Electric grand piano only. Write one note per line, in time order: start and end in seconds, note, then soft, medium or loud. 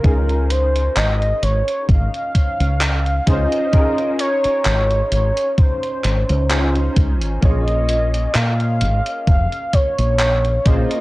0.03 3.22 C#4 medium
0.03 3.22 D#4 medium
0.03 3.22 F4 medium
0.03 3.23 G#4 medium
3.26 3.68 C#4 medium
3.26 3.68 D#4 medium
3.26 3.68 F4 medium
3.26 3.69 G#4 medium
3.26 3.69 C5 loud
3.72 6.45 C#4 medium
3.72 6.45 D#4 medium
3.72 6.45 F4 medium
3.72 6.46 G#4 medium
3.72 6.46 A#4 loud
6.50 7.37 C#4 medium
6.50 7.38 D#4 medium
6.50 7.38 F4 medium
6.50 7.38 G#4 medium
6.50 7.38 C5 medium
7.41 10.60 A#3 medium
7.41 10.60 C#4 medium
7.41 10.61 F4 medium
7.41 10.61 G#4 medium
7.41 10.61 C#5 medium
10.65 11.01 A#3 medium
10.65 11.01 C#4 medium
10.65 11.01 F4 medium
10.65 11.01 G#4 medium
10.65 11.01 C5 loud